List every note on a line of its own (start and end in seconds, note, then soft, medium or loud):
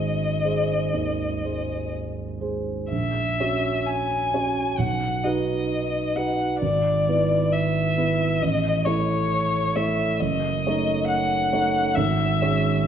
0.00 2.94 G#1 soft
0.00 0.40 G#3 soft
0.00 0.41 G#4 soft
0.00 0.41 C5 soft
0.00 1.92 D#5 soft
0.44 0.90 G#3 soft
0.44 0.90 G#4 soft
0.44 0.90 C5 soft
0.93 1.42 D#2 soft
1.43 2.38 G#3 soft
1.43 2.38 G#4 soft
1.43 2.38 C5 soft
2.40 2.86 G#3 soft
2.40 2.87 G#4 soft
2.40 2.87 C5 soft
2.91 3.38 A#1 soft
2.91 3.88 E5 soft
3.40 4.29 C#4 soft
3.40 4.29 F#4 soft
3.40 4.29 C#5 soft
3.86 4.80 G#5 soft
4.33 4.74 C#4 soft
4.33 4.75 F#4 soft
4.33 4.75 C#5 soft
4.78 5.23 B1 soft
4.78 5.26 F#5 soft
5.24 6.12 D#4 soft
5.24 6.12 F#4 soft
5.24 6.13 B4 soft
5.24 6.17 D#5 soft
6.16 6.57 D#4 soft
6.16 6.57 F#4 soft
6.16 6.58 B4 soft
6.16 6.60 F#5 medium
6.61 7.06 G#1 soft
6.61 7.54 D5 medium
7.08 7.93 B3 soft
7.08 7.93 E4 soft
7.08 7.93 B4 soft
7.52 8.44 E5 medium
7.97 8.37 B3 soft
7.97 8.38 E4 soft
7.97 8.38 B4 soft
8.41 8.84 A1 soft
8.41 8.87 D#5 medium
8.85 9.71 A3 soft
8.85 9.71 E4 soft
8.85 9.77 C#5 medium
8.85 9.72 C#5 soft
9.76 10.17 A3 soft
9.76 10.17 E4 soft
9.76 10.17 C#5 soft
9.76 10.21 E5 medium
10.20 10.64 F#1 soft
10.20 11.07 D#5 medium
10.66 11.49 A3 soft
10.66 11.49 D#4 soft
10.66 11.49 C#5 soft
11.08 11.96 F#5 medium
11.53 11.92 A3 soft
11.53 11.92 D#4 soft
11.53 11.92 C#5 soft
11.94 12.40 G#1 soft
11.94 12.87 E5 medium
12.41 12.85 G#3 soft
12.41 12.85 C#4 soft
12.41 12.85 C#5 soft